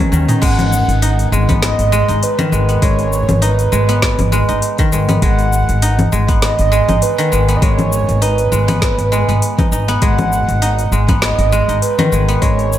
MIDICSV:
0, 0, Header, 1, 7, 480
1, 0, Start_track
1, 0, Key_signature, 5, "minor"
1, 0, Tempo, 600000
1, 338, Time_signature, 4, 2, 24, 8
1, 10229, End_track
2, 0, Start_track
2, 0, Title_t, "Synth texture"
2, 0, Program_c, 0, 99
2, 0, Note_on_c, 0, 80, 83
2, 347, Note_off_c, 0, 80, 0
2, 10229, End_track
3, 0, Start_track
3, 0, Title_t, "Soft synth lead"
3, 0, Program_c, 1, 80
3, 339, Note_on_c, 1, 78, 125
3, 1026, Note_off_c, 1, 78, 0
3, 1304, Note_on_c, 1, 75, 125
3, 1785, Note_on_c, 1, 71, 101
3, 1797, Note_off_c, 1, 75, 0
3, 2267, Note_on_c, 1, 73, 105
3, 2279, Note_off_c, 1, 71, 0
3, 2742, Note_off_c, 1, 73, 0
3, 2747, Note_on_c, 1, 71, 90
3, 3910, Note_off_c, 1, 71, 0
3, 4173, Note_on_c, 1, 78, 118
3, 4863, Note_off_c, 1, 78, 0
3, 5138, Note_on_c, 1, 75, 127
3, 5618, Note_on_c, 1, 71, 104
3, 5630, Note_off_c, 1, 75, 0
3, 6051, Note_on_c, 1, 75, 73
3, 6063, Note_off_c, 1, 71, 0
3, 6095, Note_on_c, 1, 73, 107
3, 6107, Note_off_c, 1, 75, 0
3, 6576, Note_on_c, 1, 71, 93
3, 6588, Note_off_c, 1, 73, 0
3, 7776, Note_off_c, 1, 71, 0
3, 8012, Note_on_c, 1, 78, 109
3, 8703, Note_off_c, 1, 78, 0
3, 8975, Note_on_c, 1, 75, 125
3, 9424, Note_off_c, 1, 75, 0
3, 9456, Note_on_c, 1, 71, 93
3, 9933, Note_on_c, 1, 73, 110
3, 9945, Note_off_c, 1, 71, 0
3, 10229, Note_off_c, 1, 73, 0
3, 10229, End_track
4, 0, Start_track
4, 0, Title_t, "Synth drone"
4, 0, Program_c, 2, 95
4, 0, Note_on_c, 2, 51, 77
4, 0, Note_on_c, 2, 56, 67
4, 0, Note_on_c, 2, 59, 70
4, 0, Note_on_c, 2, 71, 85
4, 303, Note_off_c, 2, 56, 0
4, 303, Note_off_c, 2, 59, 0
4, 306, Note_off_c, 2, 51, 0
4, 326, Note_off_c, 2, 71, 0
4, 10229, End_track
5, 0, Start_track
5, 0, Title_t, "Guzheng"
5, 0, Program_c, 3, 107
5, 0, Note_on_c, 3, 51, 98
5, 0, Note_on_c, 3, 54, 73
5, 0, Note_on_c, 3, 56, 75
5, 0, Note_on_c, 3, 59, 99
5, 0, Note_on_c, 3, 61, 100
5, 0, Note_on_c, 3, 63, 97
5, 85, Note_off_c, 3, 51, 0
5, 95, Note_on_c, 3, 51, 73
5, 137, Note_off_c, 3, 54, 0
5, 137, Note_off_c, 3, 56, 0
5, 224, Note_off_c, 3, 63, 0
5, 227, Note_on_c, 3, 63, 78
5, 333, Note_on_c, 3, 56, 99
5, 377, Note_off_c, 3, 51, 0
5, 814, Note_off_c, 3, 63, 0
5, 817, Note_on_c, 3, 63, 96
5, 1049, Note_off_c, 3, 56, 0
5, 1058, Note_on_c, 3, 56, 77
5, 1187, Note_off_c, 3, 59, 0
5, 1190, Note_on_c, 3, 59, 98
5, 1528, Note_off_c, 3, 56, 0
5, 1538, Note_on_c, 3, 56, 101
5, 1664, Note_off_c, 3, 63, 0
5, 1667, Note_on_c, 3, 63, 78
5, 1909, Note_on_c, 3, 51, 103
5, 1937, Note_off_c, 3, 56, 0
5, 2018, Note_on_c, 3, 56, 73
5, 2066, Note_off_c, 3, 61, 0
5, 2146, Note_off_c, 3, 59, 0
5, 2149, Note_on_c, 3, 59, 77
5, 2247, Note_off_c, 3, 56, 0
5, 2257, Note_on_c, 3, 56, 97
5, 2731, Note_off_c, 3, 63, 0
5, 2734, Note_on_c, 3, 63, 100
5, 2966, Note_off_c, 3, 56, 0
5, 2976, Note_on_c, 3, 56, 79
5, 3106, Note_off_c, 3, 59, 0
5, 3110, Note_on_c, 3, 59, 96
5, 3447, Note_off_c, 3, 56, 0
5, 3456, Note_on_c, 3, 56, 102
5, 3586, Note_off_c, 3, 63, 0
5, 3589, Note_on_c, 3, 63, 77
5, 3821, Note_off_c, 3, 51, 0
5, 3831, Note_on_c, 3, 51, 103
5, 3857, Note_off_c, 3, 56, 0
5, 3938, Note_on_c, 3, 56, 77
5, 4067, Note_off_c, 3, 59, 0
5, 4070, Note_on_c, 3, 59, 84
5, 4169, Note_off_c, 3, 56, 0
5, 4178, Note_on_c, 3, 56, 97
5, 4655, Note_off_c, 3, 63, 0
5, 4658, Note_on_c, 3, 63, 103
5, 4888, Note_off_c, 3, 56, 0
5, 4898, Note_on_c, 3, 56, 76
5, 5024, Note_off_c, 3, 59, 0
5, 5027, Note_on_c, 3, 59, 92
5, 5364, Note_off_c, 3, 56, 0
5, 5373, Note_on_c, 3, 56, 101
5, 5504, Note_off_c, 3, 63, 0
5, 5507, Note_on_c, 3, 63, 70
5, 5737, Note_off_c, 3, 51, 0
5, 5747, Note_on_c, 3, 51, 101
5, 5777, Note_off_c, 3, 56, 0
5, 5855, Note_on_c, 3, 56, 77
5, 5984, Note_off_c, 3, 59, 0
5, 5987, Note_on_c, 3, 59, 84
5, 6086, Note_off_c, 3, 56, 0
5, 6096, Note_on_c, 3, 56, 101
5, 6570, Note_off_c, 3, 63, 0
5, 6573, Note_on_c, 3, 63, 92
5, 6804, Note_off_c, 3, 56, 0
5, 6814, Note_on_c, 3, 56, 77
5, 6942, Note_off_c, 3, 59, 0
5, 6945, Note_on_c, 3, 59, 99
5, 7285, Note_off_c, 3, 56, 0
5, 7295, Note_on_c, 3, 56, 103
5, 7425, Note_off_c, 3, 59, 0
5, 7428, Note_on_c, 3, 59, 76
5, 7664, Note_off_c, 3, 63, 0
5, 7667, Note_on_c, 3, 63, 75
5, 7774, Note_off_c, 3, 63, 0
5, 7777, Note_on_c, 3, 63, 74
5, 7903, Note_off_c, 3, 59, 0
5, 7906, Note_on_c, 3, 59, 103
5, 8005, Note_off_c, 3, 56, 0
5, 8015, Note_on_c, 3, 56, 103
5, 8491, Note_off_c, 3, 63, 0
5, 8494, Note_on_c, 3, 63, 102
5, 8728, Note_off_c, 3, 56, 0
5, 8738, Note_on_c, 3, 56, 74
5, 8865, Note_off_c, 3, 59, 0
5, 8867, Note_off_c, 3, 51, 0
5, 8869, Note_on_c, 3, 59, 101
5, 9210, Note_off_c, 3, 56, 0
5, 9219, Note_on_c, 3, 56, 98
5, 9348, Note_off_c, 3, 63, 0
5, 9351, Note_on_c, 3, 63, 73
5, 9590, Note_on_c, 3, 51, 102
5, 9617, Note_off_c, 3, 56, 0
5, 9697, Note_on_c, 3, 56, 72
5, 9824, Note_off_c, 3, 59, 0
5, 9827, Note_on_c, 3, 59, 104
5, 9925, Note_off_c, 3, 56, 0
5, 9934, Note_on_c, 3, 56, 99
5, 10229, Note_off_c, 3, 51, 0
5, 10229, Note_off_c, 3, 56, 0
5, 10229, Note_off_c, 3, 59, 0
5, 10229, Note_off_c, 3, 63, 0
5, 10229, End_track
6, 0, Start_track
6, 0, Title_t, "Upright bass"
6, 0, Program_c, 4, 32
6, 94, Note_on_c, 4, 39, 97
6, 191, Note_off_c, 4, 39, 0
6, 339, Note_on_c, 4, 32, 101
6, 652, Note_off_c, 4, 32, 0
6, 706, Note_on_c, 4, 32, 82
6, 1008, Note_off_c, 4, 32, 0
6, 1057, Note_on_c, 4, 32, 83
6, 1371, Note_off_c, 4, 32, 0
6, 1430, Note_on_c, 4, 32, 91
6, 1597, Note_off_c, 4, 32, 0
6, 1673, Note_on_c, 4, 32, 76
6, 1750, Note_off_c, 4, 32, 0
6, 2018, Note_on_c, 4, 32, 78
6, 2198, Note_off_c, 4, 32, 0
6, 2260, Note_on_c, 4, 32, 96
6, 2573, Note_off_c, 4, 32, 0
6, 2632, Note_on_c, 4, 32, 89
6, 2931, Note_off_c, 4, 32, 0
6, 2980, Note_on_c, 4, 32, 86
6, 3293, Note_off_c, 4, 32, 0
6, 3356, Note_on_c, 4, 32, 91
6, 3520, Note_off_c, 4, 32, 0
6, 3592, Note_on_c, 4, 32, 76
6, 3669, Note_off_c, 4, 32, 0
6, 3942, Note_on_c, 4, 32, 83
6, 4120, Note_off_c, 4, 32, 0
6, 4177, Note_on_c, 4, 32, 101
6, 4491, Note_off_c, 4, 32, 0
6, 4553, Note_on_c, 4, 32, 87
6, 4852, Note_off_c, 4, 32, 0
6, 4903, Note_on_c, 4, 32, 83
6, 5214, Note_off_c, 4, 32, 0
6, 5274, Note_on_c, 4, 32, 92
6, 5439, Note_off_c, 4, 32, 0
6, 5509, Note_on_c, 4, 32, 76
6, 5588, Note_off_c, 4, 32, 0
6, 5860, Note_on_c, 4, 32, 71
6, 6040, Note_off_c, 4, 32, 0
6, 6098, Note_on_c, 4, 32, 96
6, 6412, Note_off_c, 4, 32, 0
6, 6469, Note_on_c, 4, 32, 85
6, 6770, Note_off_c, 4, 32, 0
6, 6817, Note_on_c, 4, 32, 80
6, 7131, Note_off_c, 4, 32, 0
6, 7186, Note_on_c, 4, 32, 94
6, 7355, Note_off_c, 4, 32, 0
6, 7428, Note_on_c, 4, 32, 81
6, 7507, Note_off_c, 4, 32, 0
6, 7773, Note_on_c, 4, 32, 76
6, 7956, Note_off_c, 4, 32, 0
6, 8018, Note_on_c, 4, 32, 98
6, 8332, Note_off_c, 4, 32, 0
6, 8386, Note_on_c, 4, 32, 88
6, 8688, Note_off_c, 4, 32, 0
6, 8733, Note_on_c, 4, 32, 83
6, 9050, Note_off_c, 4, 32, 0
6, 9108, Note_on_c, 4, 32, 88
6, 9276, Note_off_c, 4, 32, 0
6, 9346, Note_on_c, 4, 32, 81
6, 9426, Note_off_c, 4, 32, 0
6, 9697, Note_on_c, 4, 32, 78
6, 9878, Note_off_c, 4, 32, 0
6, 9938, Note_on_c, 4, 32, 103
6, 10229, Note_off_c, 4, 32, 0
6, 10229, End_track
7, 0, Start_track
7, 0, Title_t, "Drums"
7, 99, Note_on_c, 9, 47, 82
7, 103, Note_on_c, 9, 82, 76
7, 179, Note_off_c, 9, 47, 0
7, 183, Note_off_c, 9, 82, 0
7, 232, Note_on_c, 9, 45, 75
7, 232, Note_on_c, 9, 46, 54
7, 236, Note_on_c, 9, 82, 40
7, 312, Note_off_c, 9, 45, 0
7, 312, Note_off_c, 9, 46, 0
7, 316, Note_off_c, 9, 82, 0
7, 339, Note_on_c, 9, 36, 117
7, 341, Note_on_c, 9, 46, 73
7, 341, Note_on_c, 9, 49, 107
7, 345, Note_on_c, 9, 82, 44
7, 419, Note_off_c, 9, 36, 0
7, 421, Note_off_c, 9, 46, 0
7, 421, Note_off_c, 9, 49, 0
7, 425, Note_off_c, 9, 82, 0
7, 471, Note_on_c, 9, 46, 32
7, 471, Note_on_c, 9, 64, 75
7, 475, Note_on_c, 9, 82, 30
7, 551, Note_off_c, 9, 46, 0
7, 551, Note_off_c, 9, 64, 0
7, 555, Note_off_c, 9, 82, 0
7, 582, Note_on_c, 9, 82, 81
7, 662, Note_off_c, 9, 82, 0
7, 711, Note_on_c, 9, 46, 31
7, 715, Note_on_c, 9, 82, 33
7, 791, Note_off_c, 9, 46, 0
7, 795, Note_off_c, 9, 82, 0
7, 820, Note_on_c, 9, 46, 72
7, 824, Note_on_c, 9, 82, 46
7, 900, Note_off_c, 9, 46, 0
7, 904, Note_off_c, 9, 82, 0
7, 953, Note_on_c, 9, 46, 32
7, 957, Note_on_c, 9, 82, 32
7, 1033, Note_off_c, 9, 46, 0
7, 1037, Note_off_c, 9, 82, 0
7, 1065, Note_on_c, 9, 82, 76
7, 1145, Note_off_c, 9, 82, 0
7, 1191, Note_on_c, 9, 36, 100
7, 1193, Note_on_c, 9, 46, 43
7, 1193, Note_on_c, 9, 64, 69
7, 1197, Note_on_c, 9, 82, 30
7, 1271, Note_off_c, 9, 36, 0
7, 1273, Note_off_c, 9, 46, 0
7, 1273, Note_off_c, 9, 64, 0
7, 1277, Note_off_c, 9, 82, 0
7, 1300, Note_on_c, 9, 38, 84
7, 1300, Note_on_c, 9, 46, 74
7, 1304, Note_on_c, 9, 82, 46
7, 1380, Note_off_c, 9, 38, 0
7, 1380, Note_off_c, 9, 46, 0
7, 1384, Note_off_c, 9, 82, 0
7, 1432, Note_on_c, 9, 46, 44
7, 1435, Note_on_c, 9, 82, 31
7, 1512, Note_off_c, 9, 46, 0
7, 1515, Note_off_c, 9, 82, 0
7, 1542, Note_on_c, 9, 82, 80
7, 1622, Note_off_c, 9, 82, 0
7, 1674, Note_on_c, 9, 46, 29
7, 1678, Note_on_c, 9, 82, 29
7, 1754, Note_off_c, 9, 46, 0
7, 1758, Note_off_c, 9, 82, 0
7, 1781, Note_on_c, 9, 46, 77
7, 1785, Note_on_c, 9, 82, 46
7, 1861, Note_off_c, 9, 46, 0
7, 1865, Note_off_c, 9, 82, 0
7, 1910, Note_on_c, 9, 46, 35
7, 1910, Note_on_c, 9, 64, 82
7, 1914, Note_on_c, 9, 82, 35
7, 1990, Note_off_c, 9, 46, 0
7, 1990, Note_off_c, 9, 64, 0
7, 1994, Note_off_c, 9, 82, 0
7, 2022, Note_on_c, 9, 82, 80
7, 2102, Note_off_c, 9, 82, 0
7, 2150, Note_on_c, 9, 46, 32
7, 2154, Note_on_c, 9, 82, 33
7, 2230, Note_off_c, 9, 46, 0
7, 2234, Note_off_c, 9, 82, 0
7, 2258, Note_on_c, 9, 46, 66
7, 2259, Note_on_c, 9, 36, 118
7, 2262, Note_on_c, 9, 82, 46
7, 2338, Note_off_c, 9, 46, 0
7, 2339, Note_off_c, 9, 36, 0
7, 2342, Note_off_c, 9, 82, 0
7, 2389, Note_on_c, 9, 46, 29
7, 2393, Note_on_c, 9, 82, 29
7, 2469, Note_off_c, 9, 46, 0
7, 2473, Note_off_c, 9, 82, 0
7, 2500, Note_on_c, 9, 82, 82
7, 2580, Note_off_c, 9, 82, 0
7, 2629, Note_on_c, 9, 46, 32
7, 2629, Note_on_c, 9, 64, 72
7, 2633, Note_on_c, 9, 82, 34
7, 2709, Note_off_c, 9, 46, 0
7, 2709, Note_off_c, 9, 64, 0
7, 2713, Note_off_c, 9, 82, 0
7, 2738, Note_on_c, 9, 46, 72
7, 2742, Note_on_c, 9, 82, 47
7, 2818, Note_off_c, 9, 46, 0
7, 2822, Note_off_c, 9, 82, 0
7, 2870, Note_on_c, 9, 46, 32
7, 2874, Note_on_c, 9, 82, 32
7, 2950, Note_off_c, 9, 46, 0
7, 2954, Note_off_c, 9, 82, 0
7, 2981, Note_on_c, 9, 82, 81
7, 3061, Note_off_c, 9, 82, 0
7, 3110, Note_on_c, 9, 46, 41
7, 3114, Note_on_c, 9, 82, 32
7, 3190, Note_off_c, 9, 46, 0
7, 3194, Note_off_c, 9, 82, 0
7, 3219, Note_on_c, 9, 36, 99
7, 3219, Note_on_c, 9, 38, 85
7, 3219, Note_on_c, 9, 46, 73
7, 3223, Note_on_c, 9, 82, 51
7, 3299, Note_off_c, 9, 36, 0
7, 3299, Note_off_c, 9, 38, 0
7, 3299, Note_off_c, 9, 46, 0
7, 3303, Note_off_c, 9, 82, 0
7, 3349, Note_on_c, 9, 46, 44
7, 3349, Note_on_c, 9, 64, 74
7, 3353, Note_on_c, 9, 82, 31
7, 3429, Note_off_c, 9, 46, 0
7, 3429, Note_off_c, 9, 64, 0
7, 3433, Note_off_c, 9, 82, 0
7, 3461, Note_on_c, 9, 82, 78
7, 3541, Note_off_c, 9, 82, 0
7, 3590, Note_on_c, 9, 46, 28
7, 3594, Note_on_c, 9, 82, 32
7, 3670, Note_off_c, 9, 46, 0
7, 3674, Note_off_c, 9, 82, 0
7, 3698, Note_on_c, 9, 46, 72
7, 3702, Note_on_c, 9, 82, 46
7, 3778, Note_off_c, 9, 46, 0
7, 3782, Note_off_c, 9, 82, 0
7, 3827, Note_on_c, 9, 46, 34
7, 3831, Note_on_c, 9, 36, 101
7, 3831, Note_on_c, 9, 82, 35
7, 3907, Note_off_c, 9, 46, 0
7, 3911, Note_off_c, 9, 36, 0
7, 3911, Note_off_c, 9, 82, 0
7, 3941, Note_on_c, 9, 82, 83
7, 4021, Note_off_c, 9, 82, 0
7, 4069, Note_on_c, 9, 46, 33
7, 4069, Note_on_c, 9, 64, 73
7, 4072, Note_on_c, 9, 82, 34
7, 4149, Note_off_c, 9, 46, 0
7, 4149, Note_off_c, 9, 64, 0
7, 4152, Note_off_c, 9, 82, 0
7, 4178, Note_on_c, 9, 36, 127
7, 4178, Note_on_c, 9, 46, 63
7, 4181, Note_on_c, 9, 82, 45
7, 4258, Note_off_c, 9, 36, 0
7, 4258, Note_off_c, 9, 46, 0
7, 4261, Note_off_c, 9, 82, 0
7, 4309, Note_on_c, 9, 46, 27
7, 4313, Note_on_c, 9, 82, 31
7, 4389, Note_off_c, 9, 46, 0
7, 4393, Note_off_c, 9, 82, 0
7, 4422, Note_on_c, 9, 82, 82
7, 4502, Note_off_c, 9, 82, 0
7, 4550, Note_on_c, 9, 46, 29
7, 4554, Note_on_c, 9, 82, 35
7, 4630, Note_off_c, 9, 46, 0
7, 4634, Note_off_c, 9, 82, 0
7, 4659, Note_on_c, 9, 46, 70
7, 4662, Note_on_c, 9, 82, 50
7, 4739, Note_off_c, 9, 46, 0
7, 4742, Note_off_c, 9, 82, 0
7, 4789, Note_on_c, 9, 46, 30
7, 4789, Note_on_c, 9, 64, 79
7, 4793, Note_on_c, 9, 82, 34
7, 4869, Note_off_c, 9, 46, 0
7, 4869, Note_off_c, 9, 64, 0
7, 4873, Note_off_c, 9, 82, 0
7, 4900, Note_on_c, 9, 82, 79
7, 4980, Note_off_c, 9, 82, 0
7, 5030, Note_on_c, 9, 36, 115
7, 5030, Note_on_c, 9, 46, 43
7, 5033, Note_on_c, 9, 82, 32
7, 5110, Note_off_c, 9, 36, 0
7, 5110, Note_off_c, 9, 46, 0
7, 5113, Note_off_c, 9, 82, 0
7, 5138, Note_on_c, 9, 38, 85
7, 5138, Note_on_c, 9, 46, 66
7, 5142, Note_on_c, 9, 82, 48
7, 5218, Note_off_c, 9, 38, 0
7, 5218, Note_off_c, 9, 46, 0
7, 5222, Note_off_c, 9, 82, 0
7, 5269, Note_on_c, 9, 46, 43
7, 5273, Note_on_c, 9, 82, 33
7, 5349, Note_off_c, 9, 46, 0
7, 5353, Note_off_c, 9, 82, 0
7, 5380, Note_on_c, 9, 82, 73
7, 5460, Note_off_c, 9, 82, 0
7, 5509, Note_on_c, 9, 46, 28
7, 5509, Note_on_c, 9, 64, 68
7, 5512, Note_on_c, 9, 82, 31
7, 5589, Note_off_c, 9, 46, 0
7, 5589, Note_off_c, 9, 64, 0
7, 5592, Note_off_c, 9, 82, 0
7, 5617, Note_on_c, 9, 46, 72
7, 5620, Note_on_c, 9, 82, 50
7, 5697, Note_off_c, 9, 46, 0
7, 5700, Note_off_c, 9, 82, 0
7, 5750, Note_on_c, 9, 46, 34
7, 5754, Note_on_c, 9, 82, 37
7, 5830, Note_off_c, 9, 46, 0
7, 5834, Note_off_c, 9, 82, 0
7, 5860, Note_on_c, 9, 82, 82
7, 5940, Note_off_c, 9, 82, 0
7, 5988, Note_on_c, 9, 46, 31
7, 5992, Note_on_c, 9, 82, 36
7, 6068, Note_off_c, 9, 46, 0
7, 6072, Note_off_c, 9, 82, 0
7, 6098, Note_on_c, 9, 36, 122
7, 6098, Note_on_c, 9, 46, 62
7, 6101, Note_on_c, 9, 82, 46
7, 6178, Note_off_c, 9, 36, 0
7, 6178, Note_off_c, 9, 46, 0
7, 6181, Note_off_c, 9, 82, 0
7, 6229, Note_on_c, 9, 46, 29
7, 6229, Note_on_c, 9, 64, 67
7, 6232, Note_on_c, 9, 82, 29
7, 6309, Note_off_c, 9, 46, 0
7, 6309, Note_off_c, 9, 64, 0
7, 6312, Note_off_c, 9, 82, 0
7, 6340, Note_on_c, 9, 82, 85
7, 6420, Note_off_c, 9, 82, 0
7, 6469, Note_on_c, 9, 46, 28
7, 6473, Note_on_c, 9, 82, 33
7, 6549, Note_off_c, 9, 46, 0
7, 6553, Note_off_c, 9, 82, 0
7, 6576, Note_on_c, 9, 46, 63
7, 6580, Note_on_c, 9, 82, 47
7, 6656, Note_off_c, 9, 46, 0
7, 6660, Note_off_c, 9, 82, 0
7, 6705, Note_on_c, 9, 46, 29
7, 6709, Note_on_c, 9, 82, 33
7, 6785, Note_off_c, 9, 46, 0
7, 6789, Note_off_c, 9, 82, 0
7, 6820, Note_on_c, 9, 82, 78
7, 6900, Note_off_c, 9, 82, 0
7, 6948, Note_on_c, 9, 46, 43
7, 6948, Note_on_c, 9, 64, 71
7, 6952, Note_on_c, 9, 82, 34
7, 7028, Note_off_c, 9, 46, 0
7, 7028, Note_off_c, 9, 64, 0
7, 7032, Note_off_c, 9, 82, 0
7, 7056, Note_on_c, 9, 36, 105
7, 7056, Note_on_c, 9, 38, 80
7, 7056, Note_on_c, 9, 46, 69
7, 7060, Note_on_c, 9, 82, 49
7, 7136, Note_off_c, 9, 36, 0
7, 7136, Note_off_c, 9, 38, 0
7, 7136, Note_off_c, 9, 46, 0
7, 7140, Note_off_c, 9, 82, 0
7, 7188, Note_on_c, 9, 46, 41
7, 7192, Note_on_c, 9, 82, 31
7, 7268, Note_off_c, 9, 46, 0
7, 7272, Note_off_c, 9, 82, 0
7, 7302, Note_on_c, 9, 82, 81
7, 7382, Note_off_c, 9, 82, 0
7, 7430, Note_on_c, 9, 46, 25
7, 7434, Note_on_c, 9, 82, 30
7, 7510, Note_off_c, 9, 46, 0
7, 7514, Note_off_c, 9, 82, 0
7, 7538, Note_on_c, 9, 46, 65
7, 7542, Note_on_c, 9, 82, 49
7, 7618, Note_off_c, 9, 46, 0
7, 7622, Note_off_c, 9, 82, 0
7, 7668, Note_on_c, 9, 36, 107
7, 7669, Note_on_c, 9, 46, 30
7, 7669, Note_on_c, 9, 64, 82
7, 7673, Note_on_c, 9, 82, 33
7, 7748, Note_off_c, 9, 36, 0
7, 7749, Note_off_c, 9, 46, 0
7, 7749, Note_off_c, 9, 64, 0
7, 7753, Note_off_c, 9, 82, 0
7, 7779, Note_on_c, 9, 82, 79
7, 7859, Note_off_c, 9, 82, 0
7, 7908, Note_on_c, 9, 46, 30
7, 7912, Note_on_c, 9, 82, 33
7, 7988, Note_off_c, 9, 46, 0
7, 7992, Note_off_c, 9, 82, 0
7, 8014, Note_on_c, 9, 46, 64
7, 8017, Note_on_c, 9, 36, 111
7, 8018, Note_on_c, 9, 82, 47
7, 8094, Note_off_c, 9, 46, 0
7, 8097, Note_off_c, 9, 36, 0
7, 8098, Note_off_c, 9, 82, 0
7, 8148, Note_on_c, 9, 46, 28
7, 8148, Note_on_c, 9, 64, 79
7, 8152, Note_on_c, 9, 82, 30
7, 8228, Note_off_c, 9, 46, 0
7, 8228, Note_off_c, 9, 64, 0
7, 8232, Note_off_c, 9, 82, 0
7, 8260, Note_on_c, 9, 82, 80
7, 8340, Note_off_c, 9, 82, 0
7, 8389, Note_on_c, 9, 46, 30
7, 8393, Note_on_c, 9, 82, 31
7, 8469, Note_off_c, 9, 46, 0
7, 8473, Note_off_c, 9, 82, 0
7, 8497, Note_on_c, 9, 46, 65
7, 8501, Note_on_c, 9, 82, 45
7, 8577, Note_off_c, 9, 46, 0
7, 8581, Note_off_c, 9, 82, 0
7, 8629, Note_on_c, 9, 46, 31
7, 8633, Note_on_c, 9, 82, 34
7, 8709, Note_off_c, 9, 46, 0
7, 8713, Note_off_c, 9, 82, 0
7, 8739, Note_on_c, 9, 82, 73
7, 8819, Note_off_c, 9, 82, 0
7, 8868, Note_on_c, 9, 46, 41
7, 8868, Note_on_c, 9, 64, 71
7, 8869, Note_on_c, 9, 36, 109
7, 8872, Note_on_c, 9, 82, 32
7, 8948, Note_off_c, 9, 46, 0
7, 8948, Note_off_c, 9, 64, 0
7, 8949, Note_off_c, 9, 36, 0
7, 8952, Note_off_c, 9, 82, 0
7, 8976, Note_on_c, 9, 38, 83
7, 8976, Note_on_c, 9, 46, 65
7, 8980, Note_on_c, 9, 82, 48
7, 9056, Note_off_c, 9, 38, 0
7, 9056, Note_off_c, 9, 46, 0
7, 9060, Note_off_c, 9, 82, 0
7, 9109, Note_on_c, 9, 46, 41
7, 9113, Note_on_c, 9, 82, 28
7, 9189, Note_off_c, 9, 46, 0
7, 9193, Note_off_c, 9, 82, 0
7, 9221, Note_on_c, 9, 82, 76
7, 9301, Note_off_c, 9, 82, 0
7, 9350, Note_on_c, 9, 46, 27
7, 9354, Note_on_c, 9, 82, 31
7, 9430, Note_off_c, 9, 46, 0
7, 9434, Note_off_c, 9, 82, 0
7, 9459, Note_on_c, 9, 46, 67
7, 9462, Note_on_c, 9, 82, 45
7, 9539, Note_off_c, 9, 46, 0
7, 9542, Note_off_c, 9, 82, 0
7, 9589, Note_on_c, 9, 46, 33
7, 9589, Note_on_c, 9, 64, 84
7, 9593, Note_on_c, 9, 82, 31
7, 9669, Note_off_c, 9, 46, 0
7, 9669, Note_off_c, 9, 64, 0
7, 9673, Note_off_c, 9, 82, 0
7, 9700, Note_on_c, 9, 82, 79
7, 9780, Note_off_c, 9, 82, 0
7, 9829, Note_on_c, 9, 46, 29
7, 9833, Note_on_c, 9, 82, 33
7, 9909, Note_off_c, 9, 46, 0
7, 9913, Note_off_c, 9, 82, 0
7, 9938, Note_on_c, 9, 36, 112
7, 9938, Note_on_c, 9, 46, 66
7, 9941, Note_on_c, 9, 82, 41
7, 10018, Note_off_c, 9, 36, 0
7, 10018, Note_off_c, 9, 46, 0
7, 10021, Note_off_c, 9, 82, 0
7, 10071, Note_on_c, 9, 46, 31
7, 10075, Note_on_c, 9, 82, 26
7, 10151, Note_off_c, 9, 46, 0
7, 10155, Note_off_c, 9, 82, 0
7, 10182, Note_on_c, 9, 82, 75
7, 10229, Note_off_c, 9, 82, 0
7, 10229, End_track
0, 0, End_of_file